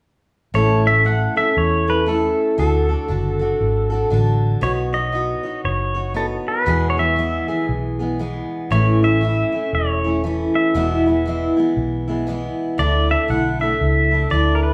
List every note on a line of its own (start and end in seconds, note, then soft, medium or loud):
0.54 1.27 A1 medium
0.54 0.85 A2 medium
0.54 0.86 A3 medium
0.54 0.86 C#4 medium
0.54 0.86 E4 medium
0.54 0.84 A4 medium
0.54 0.87 C#5 medium
0.87 1.06 E4 soft
0.87 1.06 E5 medium
1.05 1.36 A3 medium
1.05 1.37 C#4 medium
1.05 1.36 E4 medium
1.05 1.35 A4 medium
1.05 1.35 F#5 medium
1.36 1.89 C#4 soft
1.36 1.88 E4 soft
1.36 1.86 A4 soft
1.36 1.57 E5 medium
1.57 2.29 E2 medium
1.57 1.89 C#5 medium
1.87 2.06 C#4 soft
1.87 2.08 E4 soft
1.87 2.07 A4 soft
1.87 2.07 B4 medium
2.06 2.57 A3 medium
2.06 2.58 C#4 medium
2.06 2.59 E4 medium
2.06 2.58 A4 medium
2.06 2.59 A4 medium
2.58 2.95 D2 medium
2.58 2.89 D3 medium
2.58 2.90 D4 medium
2.58 2.90 F#4 medium
2.58 4.08 A4 medium
2.58 2.88 A4 medium
2.89 3.08 D4 soft
2.89 3.09 F#4 soft
2.89 3.09 A4 soft
3.08 3.53 F#1 medium
3.08 3.40 D3 medium
3.08 3.41 D4 medium
3.08 3.40 F#4 medium
3.08 3.38 A4 medium
3.39 3.92 D4 soft
3.39 3.91 F#4 soft
3.39 3.89 A4 medium
3.60 4.04 G#1 medium
3.90 4.10 D4 soft
3.90 4.11 F#4 soft
3.90 4.10 A4 medium
4.10 4.55 A1 medium
4.10 4.61 D3 medium
4.10 4.62 D4 medium
4.10 4.62 F#4 medium
4.10 4.63 A4 medium
4.61 5.34 B1 medium
4.61 4.93 B3 medium
4.61 4.94 D#4 medium
4.61 4.94 F#4 medium
4.61 4.71 C#5 medium
4.61 4.92 C#5 medium
4.93 5.12 D#4 soft
4.93 5.14 F#4 soft
4.93 5.13 C#5 soft
4.93 5.60 D#5 medium
5.12 5.44 B3 soft
5.12 5.45 D#4 medium
5.12 5.44 F#4 medium
5.12 5.42 C#5 medium
5.43 5.97 D#4 soft
5.43 5.95 F#4 soft
5.43 5.93 C#5 soft
5.64 6.37 F#1 medium
5.64 6.12 C#5 medium
5.94 6.15 D#4 soft
5.94 6.16 F#4 soft
5.94 6.15 C#5 soft
6.14 6.66 B3 medium
6.14 6.67 D#4 medium
6.14 6.67 F#4 medium
6.14 6.25 A4 medium
6.14 6.67 C#5 medium
6.48 6.89 B4 medium
6.66 6.98 E2 medium
6.66 7.39 E2 medium
6.66 6.98 B2 medium
6.66 6.98 E3 medium
6.66 6.98 G#3 medium
6.66 6.97 B3 medium
6.66 6.96 G#4 medium
6.90 6.98 C#5 medium
6.97 7.15 E3 soft
6.97 7.17 G#3 soft
6.97 7.17 B3 soft
6.97 7.17 G#4 soft
6.97 7.65 E5 medium
7.16 7.48 E3 medium
7.16 7.49 G#3 medium
7.16 7.48 B3 medium
7.16 7.47 G#4 medium
7.48 8.02 E3 soft
7.48 8.00 G#3 soft
7.48 7.99 B3 soft
7.48 7.98 G#4 soft
7.69 8.41 B1 medium
7.99 8.18 E3 soft
7.99 8.19 G#3 soft
7.99 8.20 B3 soft
7.99 8.19 G#4 soft
8.19 8.71 E3 medium
8.19 8.71 G#3 medium
8.19 8.72 B3 medium
8.19 8.72 G#4 medium
8.70 9.43 A1 medium
8.70 9.02 A2 medium
8.70 9.02 E3 medium
8.70 9.03 A3 medium
8.70 9.03 C#4 medium
8.70 9.02 E4 medium
8.70 9.04 C#5 medium
9.03 9.21 A3 soft
9.03 9.22 C#4 soft
9.03 9.22 E4 soft
9.03 9.74 E5 loud
9.21 9.53 E3 medium
9.21 9.53 A3 soft
9.21 9.53 C#4 medium
9.21 9.51 E4 medium
9.52 10.05 A3 soft
9.52 10.05 C#4 soft
9.52 10.04 E4 soft
9.73 10.45 E1 medium
9.73 10.21 C#5 medium
10.04 10.24 A3 soft
10.04 10.25 C#4 soft
10.04 10.24 E4 soft
10.24 10.75 E3 medium
10.24 10.75 A3 medium
10.24 10.76 C#4 medium
10.24 10.76 E4 medium
10.55 11.53 E5 medium
10.74 11.47 E1 medium
10.74 11.06 E2 medium
10.74 11.06 B2 medium
10.74 11.07 E3 medium
10.74 11.07 G#3 medium
10.74 11.06 B3 medium
10.74 11.05 E4 medium
11.06 11.24 E3 soft
11.06 11.26 G#3 soft
11.06 11.26 B3 soft
11.06 11.26 E4 soft
11.26 11.57 E3 medium
11.26 11.58 G#3 medium
11.26 11.57 B3 medium
11.26 11.55 E4 medium
11.57 12.10 E3 soft
11.57 12.09 G#3 soft
11.57 12.08 B3 soft
11.57 12.07 E4 medium
11.77 12.49 B1 medium
12.08 12.26 E3 soft
12.08 12.27 G#3 medium
12.08 12.28 B3 medium
12.08 12.28 E4 medium
12.27 12.77 E3 medium
12.27 12.79 G#3 medium
12.27 12.79 B3 medium
12.27 12.80 E4 medium
12.78 13.15 D2 medium
12.78 13.10 D3 medium
12.78 13.10 A3 medium
12.78 13.10 D4 medium
12.78 13.08 E4 medium
12.78 13.11 D5 medium
13.09 13.28 A3 soft
13.09 13.29 D4 soft
13.09 13.29 E4 soft
13.09 13.29 E5 medium
13.28 13.73 B1 medium
13.28 13.61 D3 medium
13.28 13.61 A3 soft
13.28 13.60 D4 medium
13.28 13.58 E4 medium
13.28 13.61 F#5 medium
13.60 14.13 A3 soft
13.60 14.12 D4 soft
13.60 14.11 E4 soft
13.60 14.34 E5 medium
13.81 14.24 C#2 medium
14.11 14.30 A3 soft
14.11 14.32 D4 soft
14.11 14.31 E4 soft
14.30 14.74 D2 medium
14.30 14.74 D3 medium
14.30 14.74 A3 medium
14.30 14.74 D4 medium
14.30 14.74 E4 medium
14.30 14.55 D5 medium
14.55 14.63 A#4 medium
14.63 14.74 B4 medium